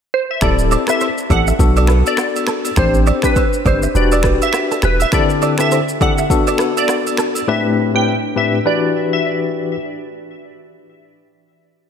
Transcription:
0.14 C5
0.31 E5
0.41 D1 C4 E4 G4 A4 D5, finger snap, kick, cross-stick, shaker
0.59 shaker
0.71 D5, high agogo, shaker
0.87 C4 E4 G4 A4 B4 E5, finger snap, cross-stick, shaker
1.01 C5, high agogo, shaker
1.18 shaker
1.30 A1 C4 E4 G4 A4 D5 F#5, kick, high agogo, shaker
1.47 E5, shaker
1.59 B1 B3 D4 F#4 A4, kick, shaker
1.76 D5, high agogo, shaker
1.87 B4, finger snap, cross-stick, shaker
2.06 D5, high agogo, shaker
2.17 finger snap, cross-stick, low woodblock, shaker
2.36 high agogo, shaker
2.47 A4, finger snap, cross-stick, shaker
2.65 high agogo, shaker
2.76 A1 C4 D4 G4 C5, finger snap, kick, cross-stick, shaker
2.94 shaker
3.07 D5, high agogo, shaker
3.22 C4 D4 G4 B4, finger snap, kick, cross-stick, shaker
3.36 C5, kick, high agogo, shaker
3.53 shaker
3.65 G1 C4 D4 G4 B4 C5 D5, kick, high agogo, shaker
3.83 E5, shaker
3.95 E1 D4 F#4 G4 B4 D5, shaker
4.12 D5, high agogo, shaker
4.23 B4, finger snap, kick, cross-stick, shaker
4.42 E5, high agogo, shaker
4.53 finger snap, cross-stick, low woodblock, shaker
4.71 A4, high agogo, shaker
4.82 E1 G4 B4, finger snap, cross-stick, shaker
5.00 E5, high agogo, shaker
5.12 D3 C4 E4 G4 A4 D5, finger snap, kick, cross-stick, shaker
5.30 shaker
5.42 D5, high agogo, shaker
5.58 D3 C4 E4 G4 A4 B4 E5, finger snap, cross-stick, shaker
5.71 C5, high agogo, shaker
5.89 shaker
6.01 D3 C4 E4 G4 A4 D5 F#5, kick, high agogo, shaker
6.18 E5, shaker
6.30 B3 D4 F#4 A4, kick, shaker
6.47 D5, high agogo, shaker
6.58 B4, finger snap, cross-stick, shaker
6.77 D5, high agogo, shaker
6.88 finger snap, cross-stick, low woodblock, shaker
7.07 high agogo, shaker
7.17 A4, finger snap, cross-stick, shaker
7.35 high agogo, shaker
7.48 A2 C4 D4 G4 B4 E5
7.94 A2 C4 D4 G4 B4 G5
8.36 A2 C4 D4 G4 B4 E5
8.65 E3 D4 F#4 G4 B4 D5
9.13 E5

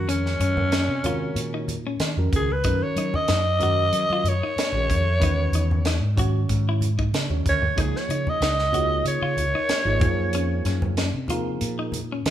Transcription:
Already playing: D#3 G#3 C#4 F#4 A#4
0.07 F2 C#4, closed hi-hat
0.26 snare
0.40 F#2 C#4, closed hi-hat
0.57 high conga, low conga
0.72 C#4, snare, closed hi-hat
0.88 C3
1.03 D#3 G#3 F4 F#4 A#4 C#5, closed hi-hat, low conga
1.35 A#2, closed hi-hat
1.54 D#4
1.68 closed hi-hat, high conga
1.87 C#4
2.00 D#3, snare, closed hi-hat
2.17 F2 D#3 G#3 C#4 F#4 A#4
2.32 C#2 G#4, kick, closed hi-hat, high conga, low conga
2.52 B4
2.64 F#2 D#3 G#3 C#4 D#4 F#4 A#4, kick, closed hi-hat
2.83 C#5
2.96 F#3 D#4, closed hi-hat
3.14 D#5, muted fretless electric bass stroke, high conga, low conga
3.28 F#2 D#4, snare, closed hi-hat
3.59 D#3 G#3 C#4 F#4 A#4, closed hi-hat, low conga
3.92 F#3, closed hi-hat
4.10 F#3 F4
4.24 F#2, closed hi-hat, high conga
4.28 C#5
4.43 D#4
4.56 muted fretless electric bass stroke, snare, closed hi-hat
4.72 A#1 D#3 G#3 C#4 F#4 G#4
4.89 F2, kick, closed hi-hat, high conga, low conga
5.19 E2 D#3 G#3 C#4 F#4 B4, kick, closed hi-hat
5.23 D#4
5.52 E2 D#4, closed hi-hat
5.71 high conga, low conga
5.85 D#4, snare, closed hi-hat
6.00 G#2
6.16 D#3 G#3 C#4 F#4 C#5, kick, closed hi-hat, high conga, low conga
6.49 G#2, kick, closed hi-hat
6.69 E4
6.81 closed hi-hat, high conga
6.99 D#4, kick
7.13 C#3, snare, closed hi-hat
7.29 D#2 D#3 G#3 C#4 F#4 C#5, high conga
7.45 D2 C#5, kick, closed hi-hat, low conga
7.62 low conga
7.76 C#2 F3 A#3 D#4 G#4 C#5, kick, closed hi-hat
7.81 G#4
7.96 C#5, snare
8.09 C#3 D#4, closed hi-hat
8.26 D#5, muted fretless electric bass stroke, high conga, low conga
8.41 C#2 D#4, snare, closed hi-hat
8.59 snare
8.72 A#3 D#4 F4 F#4 G#4 C#5, closed hi-hat, low conga
9.05 C#3 C#5, closed hi-hat
9.22 C#3 F4
9.36 C#2, closed hi-hat, high conga
9.55 D#4
9.69 muted fretless electric bass stroke, snare, closed hi-hat
9.85 G#1 F3 A#3 D#4 G#4 D#5
10.00 F#2 F3 A#3 D#4 G#4 C#5, kick, closed hi-hat, high conga, low conga
10.33 F2 C#4, closed hi-hat
10.65 F#2 C#4, snare, closed hi-hat
10.82 high conga, low conga
10.97 C#4, snare, closed hi-hat
11.14 C3
11.28 F3 A#3 D#4 F4 G#4 A#4, closed hi-hat, low conga
11.61 A#2, closed hi-hat
11.79 D#4
11.92 closed hi-hat, high conga
12.12 C#4
12.26 D#3, snare, closed hi-hat

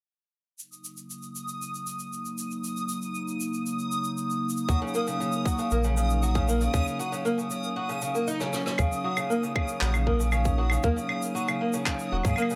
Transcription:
0.58 C#3 F#3 A#3 D#4 D#6, shaker
0.72 shaker
0.85 shaker
0.97 shaker
1.10 shaker
1.22 shaker
1.36 shaker
1.48 shaker
1.62 shaker
1.74 shaker
1.87 shaker
1.99 shaker
2.13 shaker
2.25 shaker
2.38 shaker
2.51 shaker
2.64 shaker
2.77 shaker
2.89 shaker
3.02 shaker
3.15 shaker
3.28 shaker
3.41 shaker
3.53 shaker
3.66 shaker
3.79 shaker
3.92 shaker
4.04 shaker
4.18 shaker
4.30 shaker
4.49 shaker
4.57 shaker
4.69 D#2 F#3, kick, shaker
4.82 C#3
4.87 shaker
4.95 A#3, shaker
5.07 C#3, shaker
5.20 C#3, shaker
5.32 shaker
5.45 F#3, kick, shaker
5.58 C#3, shaker
5.71 A#1 A#3, shaker
5.84 C#3, shaker
5.97 C#3, shaker
6.10 shaker
6.23 F#3, shaker
6.35 C#3, kick, shaker
6.48 A#3, shaker
6.61 C#3, shaker
6.74 D#2 C#3, kick, shaker
6.87 shaker
6.99 F#3, shaker
7.12 C#3, shaker
7.25 A#3, shaker
7.38 C#3, shaker
7.50 C#3, shaker
7.64 shaker
7.76 F#3
7.89 C#3, shaker
8.02 C#3, shaker
8.15 A#3, shaker
8.27 D#4, shaker
8.40 C#3, cross-stick, shaker
8.53 C#4, cross-stick, shaker
8.66 C#4, cross-stick, shaker
8.78 D#2 C#3 F#3 A#3 D#4 D#6, kick, claves, shaker
8.92 shaker
9.04 F#3
9.17 C#3, claves, shaker
9.30 A#3, shaker
9.43 C#3, shaker
9.55 C#3, kick, claves
9.68 shaker
9.81 A#1 F#3, clap, shaker
9.94 C#3, claves, shaker
10.07 A#3, kick
10.20 C#3, shaker
10.32 C#3, claves, shaker
10.45 kick, shaker
10.58 F#3
10.70 C#3, claves, shaker
10.83 D#2 A#3, kick, shaker
10.96 C#3, shaker
11.09 C#3, claves
11.22 shaker
11.35 F#3, shaker
11.48 C#3, claves, shaker
11.61 A#3
11.73 C#3, shaker
11.86 C#3, kick, clap, claves, shaker
11.99 shaker
12.12 D#1 F#3
12.23 G#2 C#3, kick, claves, shaker
12.30 claves
12.36 A#3, claves, shaker
12.42 claves
12.50 C#3, shaker

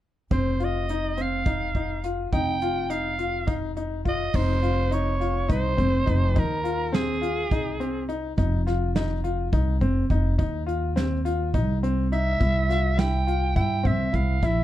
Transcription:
0.31 F1 C4 C5, kick, closed hi-hat
0.60 F4, closed hi-hat
0.64 D#5
0.89 D#4, closed hi-hat
1.17 C4, closed hi-hat
1.22 F5
1.46 D#4, kick, closed hi-hat
1.75 D#4, kick, closed hi-hat
2.04 F4, closed hi-hat
2.32 F1 D#4 G5, kick, closed hi-hat
2.61 F4, closed hi-hat
2.90 D#4 F5, closed hi-hat
3.19 F4, closed hi-hat
3.47 D#4, kick, closed hi-hat
3.77 D#4, closed hi-hat
4.05 F4 D#5, kick, closed hi-hat
4.34 F1 D#4 C5, kick, crash
4.63 F4, closed hi-hat
4.91 D#4 C#5, closed hi-hat
5.20 F4, closed hi-hat
5.49 C2 D#4 C5, kick, closed hi-hat
5.77 F1 C4, kick, closed hi-hat
6.06 F1 D#4, kick, closed hi-hat
6.35 D#2 D#4 A#4, kick, closed hi-hat
6.64 F4, closed hi-hat
6.92 C4 G#4, snare, closed hi-hat
7.21 F4, closed hi-hat
7.51 C2 D#4, kick, closed hi-hat
7.80 C4, closed hi-hat
8.09 D#4, closed hi-hat
8.37 F1 D#4, kick, closed hi-hat
8.67 F4, snare, closed hi-hat
8.96 D#4, snare, closed hi-hat
9.24 F4, closed hi-hat
9.53 C2 D#4, kick, closed hi-hat
9.81 F1 C4, kick, closed hi-hat
10.10 F1 D#4, kick, closed hi-hat
10.38 D#2 D#4, kick, closed hi-hat
10.67 F4, closed hi-hat
10.96 C4, snare, closed hi-hat
11.25 F4, closed hi-hat
11.54 C2 D#4, kick, closed hi-hat
11.83 C4, closed hi-hat
12.12 D#4 E5, closed hi-hat
12.40 C2 E4, kick, closed hi-hat
12.69 F4, snare, closed hi-hat
12.97 E4 G5, snare, closed hi-hat
13.27 F4, closed hi-hat
13.56 G2 E4 G5, kick, closed hi-hat
13.83 C2 C4 E5, kick, closed hi-hat
14.13 C2 E4 F5, kick, closed hi-hat
14.43 A#1 E4 E5, kick, closed hi-hat

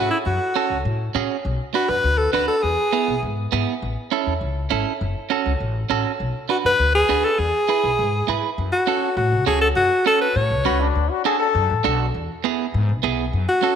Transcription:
Already playing: C#4 E4 F#4
0.11 E4
0.26 F#2 F#4
0.55 C#4 F#4 A4
0.70 C#2
0.85 A2
1.15 A2 C#4 F#4 G#4
1.45 B1
1.74 D4 F#4 B4
1.89 F#2 B4
2.04 D2
2.18 A4
2.33 D2 D4 F#4 B4
2.47 A4
2.63 E2 G#4
2.93 B3 E4 G#4
3.08 B1
3.23 G#2
3.52 G#2 B3 E4 G#4
3.82 A1
4.11 C#4 E4 A4
4.26 E2
4.41 C#2
4.70 G#1 C#4 E4 A4
5.01 F#1
5.30 C#4 F#4 A4
5.46 C#2
5.60 A1
5.90 A1 C#4 F#4 A4
6.20 B1
6.49 D4 F#4 B4
6.64 F#2 B4
6.79 D2
6.95 G#4
7.09 D2 D4 F#4 B4
7.24 A4
7.39 E2 G#4
7.69 E4 G#4 B4
7.84 B1
7.99 G#2
8.28 G#2 E4 G#4 B4
8.58 F#2
8.72 F#4
8.87 C#4 F#4 A4
9.17 A2 F#4
9.32 C#2
9.46 C#2 C#4 F#4 G#4 A4
9.61 A4
9.76 F#2 F#4
10.06 C#4 F#4 A4
10.21 B4
10.36 A2 C#5
10.51 C#2
10.65 C#2 C#4 F#4 B4
10.80 D4
10.95 D2
11.10 F#4
11.25 D4 F#4 G#4 A4
11.39 A4
11.55 F#2
11.70 A1
11.84 B1 D4 F#4 A4
12.14 E2
12.44 B3 E4 G#4
12.74 G#2
12.89 B1
13.03 B1 B3 E4 G#4
13.33 F#2
13.49 F#4
13.63 C#4 F#4 A4

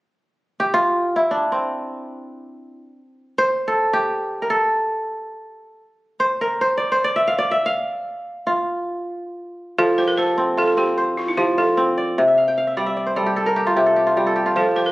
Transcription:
0.60 G4
0.74 F4
1.16 E4
1.31 D4
1.52 C4
3.38 C5
3.68 A4
3.93 G4
4.42 A#4
4.50 A4
6.20 C5
6.41 A#4
6.61 C5
6.78 D5
6.92 C5
7.04 D5
7.16 E5
7.27 F5
7.38 D5
7.51 E5
7.66 F5
8.47 F4
9.78 F3 A4
9.98 G4 C5
10.08 A#4
10.18 A4 C5
10.38 C4
10.57 F4 A4
10.68 A4
10.77 C4 G4
10.98 C5
11.17 F4
11.28 E4
11.37 F3 G4
11.58 F4 A4
11.77 C4
11.98 D5
12.18 C3
12.28 E5
12.38 F5
12.48 G5
12.58 F5
12.67 E5
12.77 G3 D5
12.86 E5
12.97 D5
13.06 C5
13.16 G3 A4
13.26 G4
13.36 A4
13.46 A#4
13.56 G4
13.67 F4
13.76 C3 G4
13.86 A4
13.96 G4
14.07 F4
14.17 G3 G4
14.27 A4
14.36 G4
14.46 F4
14.56 F3 A4
14.76 G4 C5
14.86 A#4

